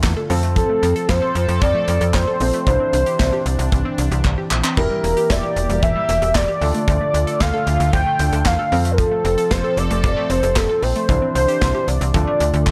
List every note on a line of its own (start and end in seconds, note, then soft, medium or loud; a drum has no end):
0.00 0.15 E2 loud
0.00 0.28 D3 medium
0.00 0.28 A3 medium
0.00 0.26 D4 medium
0.00 0.26 F4 medium
0.00 0.28 F4 medium
0.00 0.26 A4 medium
0.00 kick loud
0.00 snare loud
0.00 clap medium
0.00 closed hi-hat medium
0.17 0.27 A4 medium
0.30 0.64 F2 medium
0.30 2.64 F3 medium
0.30 0.40 C4 medium
0.30 2.36 C4 medium
0.30 4.73 C4 medium
0.30 2.36 F4 medium
0.30 2.36 A4 medium
0.30 2.64 A4 medium
0.30 open hi-hat medium
0.43 0.53 A3 medium
0.43 closed hi-hat medium
0.56 0.67 F3 medium
0.56 1.10 A4 loud
0.56 kick loud
0.56 closed hi-hat medium
0.69 0.80 A3 medium
0.83 0.94 F2 loud
0.83 0.93 C4 medium
0.83 closed hi-hat medium
0.96 1.06 A4 loud
0.96 closed hi-hat soft
1.09 1.20 F2 loud
1.09 1.63 C5 loud
1.09 1.19 F5 medium
1.09 kick loud
1.09 snare loud
1.09 closed hi-hat medium
1.22 1.32 A4 medium
1.35 1.47 F2 loud
1.35 closed hi-hat medium
1.48 1.60 F2 loud
1.48 1.59 A3 medium
1.48 closed hi-hat medium
1.61 1.73 F2 loud
1.61 1.72 F3 medium
1.61 2.15 D5 loud
1.61 kick loud
1.61 closed hi-hat medium
1.75 1.85 A3 medium
1.88 1.99 F2 loud
1.88 1.98 C4 medium
1.88 closed hi-hat medium
2.01 2.12 F2 loud
2.01 2.11 A4 medium
2.01 closed hi-hat medium
2.14 2.25 F2 loud
2.14 2.66 C5 loud
2.14 kick loud
2.14 snare loud
2.14 clap medium
2.14 closed hi-hat medium
2.27 2.38 A4 medium
2.40 2.52 A#1 medium
2.40 2.51 C4 medium
2.40 2.67 C4 medium
2.40 2.67 F4 soft
2.40 2.67 A4 medium
2.40 open hi-hat medium
2.53 2.64 A3 medium
2.53 closed hi-hat medium
2.66 2.78 C2 loud
2.66 6.58 E3 medium
2.66 2.77 E3 medium
2.66 4.75 D4 medium
2.66 4.73 D4 medium
2.66 4.73 E4 medium
2.66 3.68 C5 loud
2.66 4.73 C5 medium
2.66 kick loud
2.66 closed hi-hat medium
2.80 2.90 C4 medium
2.93 3.04 C2 loud
2.93 3.04 D4 medium
2.93 closed hi-hat medium
3.06 3.17 G4 loud
3.06 closed hi-hat soft
3.19 3.31 C2 loud
3.19 3.30 E5 medium
3.19 kick loud
3.19 snare loud
3.19 closed hi-hat medium
3.33 3.43 G4 medium
3.46 3.57 C2 loud
3.46 closed hi-hat medium
3.59 3.70 C2 loud
3.59 3.69 C4 medium
3.59 closed hi-hat medium
3.72 3.83 C2 medium
3.72 3.82 E3 medium
3.72 kick loud
3.72 closed hi-hat medium
3.85 3.96 C4 medium
3.98 4.10 C2 loud
3.98 4.09 D4 medium
3.98 closed hi-hat medium
4.11 4.23 C2 loud
4.11 4.22 G4 medium
4.11 closed hi-hat medium
4.25 4.36 C2 loud
4.25 kick loud
4.25 clap medium
4.38 4.48 G4 medium
4.51 4.62 A#1 medium
4.51 4.61 D4 medium
4.51 clap loud
4.64 4.75 C4 loud
4.64 clap loud
4.77 4.89 E1 loud
4.77 4.88 E3 medium
4.77 6.60 A#3 medium
4.77 6.58 E4 medium
4.77 6.58 G4 medium
4.77 6.60 G4 medium
4.77 6.58 A#4 medium
4.77 5.32 A#4 loud
4.77 kick loud
4.77 splash medium
4.90 5.01 G3 medium
5.04 5.15 E1 medium
5.04 5.14 A#3 medium
5.04 closed hi-hat medium
5.17 5.27 G4 loud
5.17 closed hi-hat soft
5.30 5.41 E1 loud
5.30 5.82 D5 loud
5.30 5.40 E5 medium
5.30 kick loud
5.30 snare loud
5.30 closed hi-hat medium
5.43 5.53 G4 medium
5.56 5.68 E1 loud
5.56 closed hi-hat medium
5.69 5.81 E1 loud
5.69 5.80 G3 medium
5.69 closed hi-hat medium
5.82 5.94 E1 loud
5.82 5.93 E3 medium
5.82 6.37 E5 loud
5.82 kick loud
5.82 closed hi-hat medium
5.96 6.06 G3 medium
6.09 6.20 E1 loud
6.09 6.19 A#3 medium
6.09 closed hi-hat medium
6.22 6.33 E1 loud
6.22 6.32 G4 medium
6.22 closed hi-hat medium
6.35 6.46 E1 loud
6.35 6.87 D5 loud
6.35 kick loud
6.35 snare loud
6.35 clap medium
6.35 closed hi-hat medium
6.48 6.59 G4 medium
6.61 6.73 D2 loud
6.61 8.70 D3 medium
6.61 8.70 A3 medium
6.61 6.72 D4 medium
6.61 8.16 D4 medium
6.61 8.70 F4 medium
6.61 8.16 F4 medium
6.61 8.16 A4 medium
6.61 open hi-hat medium
6.74 6.85 A3 medium
6.74 closed hi-hat medium
6.88 6.99 D2 loud
6.88 6.98 F3 medium
6.88 7.42 D5 loud
6.88 kick loud
6.88 closed hi-hat medium
7.01 7.11 A3 medium
7.14 7.25 D2 medium
7.14 7.24 D4 medium
7.14 closed hi-hat medium
7.27 7.38 A4 loud
7.27 closed hi-hat soft
7.40 7.52 D2 loud
7.40 7.51 F5 medium
7.40 7.93 F5 loud
7.40 kick loud
7.40 snare loud
7.40 closed hi-hat medium
7.54 7.64 A4 medium
7.67 7.78 D2 loud
7.67 closed hi-hat medium
7.80 7.91 D2 loud
7.80 7.90 A3 medium
7.80 closed hi-hat medium
7.93 8.05 D2 loud
7.93 8.03 F3 medium
7.93 8.47 G5 loud
7.93 kick loud
7.93 closed hi-hat medium
8.06 8.17 A3 medium
8.19 8.31 D2 loud
8.19 8.30 D4 medium
8.19 8.72 D4 medium
8.19 8.71 F4 soft
8.19 8.71 A4 medium
8.19 closed hi-hat medium
8.32 8.44 D2 loud
8.32 8.43 A4 medium
8.32 closed hi-hat medium
8.46 8.57 E2 loud
8.46 8.93 F5 loud
8.46 kick loud
8.46 snare loud
8.46 clap medium
8.46 closed hi-hat medium
8.59 8.69 A4 medium
8.72 9.06 F2 loud
8.72 11.07 F3 medium
8.72 8.82 C4 medium
8.72 12.11 C4 medium
8.72 10.79 C4 medium
8.72 10.79 F4 medium
8.72 11.06 A4 medium
8.72 10.79 A4 medium
8.72 open hi-hat medium
8.85 8.95 A3 medium
8.85 closed hi-hat medium
8.92 9.00 A#4 medium
8.98 9.09 F3 medium
8.98 9.53 A4 loud
8.98 kick loud
8.98 closed hi-hat medium
9.12 9.22 A3 medium
9.25 9.36 F1 loud
9.25 9.35 C4 medium
9.25 closed hi-hat medium
9.38 9.48 A4 loud
9.38 closed hi-hat soft
9.51 9.62 F1 loud
9.51 9.79 C5 loud
9.51 9.61 F5 medium
9.51 kick loud
9.51 snare loud
9.51 closed hi-hat medium
9.64 9.74 A4 medium
9.77 9.88 F1 loud
9.77 10.31 D5 loud
9.77 closed hi-hat medium
9.90 10.02 F1 medium
9.90 10.01 A3 medium
9.90 closed hi-hat medium
10.04 10.15 F1 loud
10.04 10.14 F3 medium
10.04 kick loud
10.04 closed hi-hat medium
10.17 10.27 A3 medium
10.30 10.41 F1 loud
10.30 10.40 C4 medium
10.30 10.58 C5 loud
10.30 closed hi-hat medium
10.43 10.54 F1 loud
10.43 10.53 A4 medium
10.43 closed hi-hat medium
10.56 10.68 F1 loud
10.56 10.84 A4 medium
10.56 kick loud
10.56 snare loud
10.56 clap medium
10.56 closed hi-hat medium
10.69 10.80 A4 medium
10.83 10.94 A#1 medium
10.83 10.93 C4 medium
10.83 11.35 C5 loud
10.83 open hi-hat medium
10.96 11.06 A3 medium
10.96 closed hi-hat medium
11.09 11.20 C2 loud
11.09 11.19 E3 medium
11.09 12.13 E3 medium
11.09 12.12 D4 medium
11.09 12.13 D4 medium
11.09 12.12 E4 medium
11.09 12.12 C5 medium
11.09 kick loud
11.09 closed hi-hat medium
11.22 11.32 C4 medium
11.35 11.46 C2 loud
11.35 11.46 D4 medium
11.35 11.89 C5 loud
11.35 closed hi-hat medium
11.48 11.59 G4 loud
11.48 closed hi-hat soft
11.61 11.73 C2 loud
11.61 11.72 E5 medium
11.61 kick loud
11.61 snare loud
11.61 closed hi-hat medium
11.75 11.85 G4 medium
11.88 11.99 C2 loud
11.88 12.14 D5 medium
11.88 closed hi-hat medium
12.01 12.12 C2 loud
12.01 12.11 C4 medium
12.01 closed hi-hat medium
12.14 12.26 D2 loud
12.14 12.71 D3 medium
12.14 12.25 F3 medium
12.14 12.71 A3 medium
12.14 12.71 D4 medium
12.14 12.71 F4 medium
12.14 12.71 A4 medium
12.14 12.71 D5 medium
12.14 kick loud
12.14 closed hi-hat medium
12.27 12.38 A3 medium
12.40 12.52 D2 loud
12.40 12.51 D4 medium
12.40 closed hi-hat medium
12.54 12.65 D2 loud
12.54 12.64 A4 medium
12.54 closed hi-hat medium
12.67 12.71 D2 medium
12.67 kick loud
12.67 clap medium